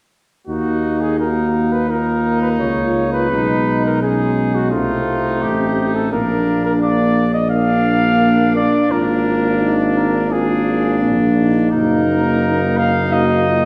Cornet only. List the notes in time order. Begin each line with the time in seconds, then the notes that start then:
0.47 F#4
1.01 G#4
1.20 A#4
1.72 B4
1.91 A#4
2.42 B4
2.60 C#5
3.13 B4
3.85 A#4
4.02 G#4
4.55 F#4
4.71 F4
5.43 G4
5.95 A4
6.12 A#4
6.65 A#4
6.82 D5
7.34 D#5
7.50 F5
8.56 D5
8.91 A#4
9.97 A#4
10.32 G#4
11.72 A#4
12.77 F5
13.13 D#5